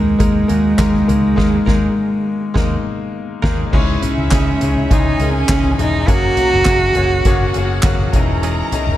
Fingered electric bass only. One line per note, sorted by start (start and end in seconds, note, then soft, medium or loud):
0.00 0.15 D#2 loud
0.20 0.44 D#2 loud
0.50 0.74 D#2 medium
0.79 1.03 D#2 medium
1.09 1.33 C#2 medium
1.38 1.58 D#2 loud
1.67 1.87 D#2 loud
2.56 2.75 D#2 medium
3.44 3.64 D#2 loud
3.73 3.97 C#2 loud
4.18 4.29 C#2 medium
4.32 4.56 C#2 loud
4.61 4.85 C#2 loud
4.91 5.15 C#2 medium
5.20 5.44 C#2 loud
5.49 5.73 C#2 loud
5.79 6.08 E1 loud
6.08 6.32 F#1 loud
6.53 6.65 F#1 medium
6.66 6.90 F#1 medium
6.97 7.21 F#1 medium
7.26 7.50 F#1 loud
7.56 7.79 F#1 loud
7.84 8.08 F#1 loud
8.13 8.62 E1 loud
8.87 8.97 E1 medium